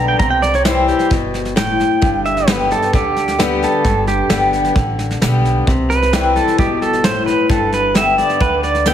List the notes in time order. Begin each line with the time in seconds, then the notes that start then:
Already playing: B1 D3 G3 B3 G4
0.08 G5
0.19 C2 C3 A#5, kick, snare
0.30 G5
0.42 D5, snare
0.54 C#5, snare
0.65 E3 G3 C4 E4 C5, snare, hi-hat pedal
0.88 G4, snare
0.99 snare
1.10 G1 B2, kick, snare
1.34 snare
1.45 snare
1.56 A2 G5, snare, hi-hat pedal
1.80 snare
2.02 G1 G2, kick, snare
2.25 E5, snare
2.37 snare
2.48 D3 G3 B3 G4 B4, snare, hi-hat pedal
2.71 B3 G4 A4, snare
2.82 snare
2.93 D2 D3 G4, kick, snare
3.16 snare
3.28 snare
3.38 D3 G3 B3 G4, snare, hi-hat pedal
3.63 A4, snare
3.85 G1 G2, kick, snare
4.07 G4, snare
4.29 G1 D3 G3 B3 G4, snare, hi-hat pedal
4.53 snare
4.64 snare
4.75 A1 D3, kick, snare
4.99 snare
5.11 snare
5.21 B1 D3 G3 B3 G4, snare, hi-hat pedal
5.45 snare
5.67 C2 C3, kick, snare
5.90 B4, snare
6.02 snare
6.13 E3 G3 C4 E4, snare, hi-hat pedal
6.36 A4, snare
6.48 snare
6.58 G1 B2 G4, kick, snare
6.82 A4, snare
6.93 snare
7.04 A2 C5, snare, hi-hat pedal
7.26 B4, snare
7.50 G1 G2 A4, kick, snare
7.72 B4, snare
7.94 D3 G3 B3 G4 E5, snare, hi-hat pedal
8.18 D5, snare
8.29 snare
8.40 D2 D3 B4, kick, snare
8.63 D5, snare
8.75 snare
8.86 D3 G3 B3 G4 G5, snare, hi-hat pedal